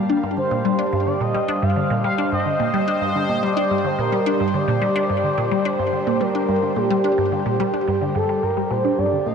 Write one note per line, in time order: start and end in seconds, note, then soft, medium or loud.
0.00 8.97 G3 medium
0.00 0.74 A#3 medium
0.00 9.35 G4 medium
0.00 8.98 F5 medium
0.00 8.99 A5 medium
0.10 0.23 D4 medium
0.23 0.37 G2 loud
0.37 0.47 D3 medium
0.37 1.08 C5 loud
0.51 0.65 A#2 loud
0.57 9.35 C5 medium
0.65 0.75 G3 loud
0.79 0.92 D4 loud
0.93 1.06 G2 loud
1.07 1.17 D3 medium
1.07 1.22 D5 loud
1.21 1.34 A#2 medium
1.21 1.64 D#5 loud
1.35 1.45 G3 loud
1.48 1.62 D4 loud
1.62 1.76 G2 loud
1.62 2.04 F5 loud
1.76 1.86 D3 medium
1.90 2.04 A#2 medium
2.04 2.14 G3 medium
2.04 2.30 F5 loud
2.18 2.31 D4 medium
2.32 2.45 G2 medium
2.32 3.44 D#5 loud
2.46 2.56 D3 medium
2.60 2.73 A#2 loud
2.74 2.84 G3 loud
2.88 3.01 D4 medium
3.01 3.15 G2 loud
3.15 3.25 D3 medium
3.29 3.42 A#2 medium
3.43 3.53 G3 loud
3.43 3.86 D5 loud
3.57 3.70 D4 loud
3.71 3.84 G2 loud
3.85 3.95 D3 medium
3.85 4.00 C5 loud
3.99 4.12 A#2 medium
3.99 4.40 A#4 medium
4.12 4.23 G3 medium
4.26 4.40 D4 loud
4.40 4.53 G2 loud
4.54 4.64 D3 medium
4.54 5.67 D5 loud
4.68 4.81 A#2 loud
4.82 4.92 G3 loud
4.96 5.09 D4 loud
5.10 5.23 G2 medium
5.24 5.34 D3 medium
5.38 5.51 A#2 loud
5.52 5.62 G3 medium
5.65 5.79 D4 loud
5.65 6.23 C5 loud
5.79 5.92 G2 loud
5.93 6.03 D3 medium
6.07 6.20 A#2 loud
6.21 6.31 G3 medium
6.21 6.78 A#4 medium
6.35 6.48 D4 medium
6.49 6.62 G2 loud
6.63 6.73 D3 medium
6.76 6.90 A#2 loud
6.76 8.15 G4 medium
6.91 7.01 G3 loud
7.04 7.17 D4 medium
7.18 7.31 G2 loud
7.32 7.42 D3 medium
7.46 7.59 A#2 loud
7.60 7.70 G3 loud
7.74 7.87 D4 medium
7.88 8.01 G2 loud
8.01 8.12 D3 medium
8.15 8.21 G2 loud
8.15 8.44 A4 medium
8.29 8.39 G3 medium
8.43 8.56 G2 medium
8.43 8.72 A#4 loud
8.57 8.67 G3 medium
8.70 8.84 A#2 loud
8.70 8.99 C5 medium
8.85 8.91 D4 medium
8.98 9.12 G2 loud
8.98 9.35 G3 medium
8.98 9.27 D5 loud
8.98 9.35 F5 medium
9.13 9.23 D3 medium
9.21 9.35 A#3 loud
9.21 9.35 A5 medium
9.26 9.35 A#2 medium
9.26 9.35 D#5 loud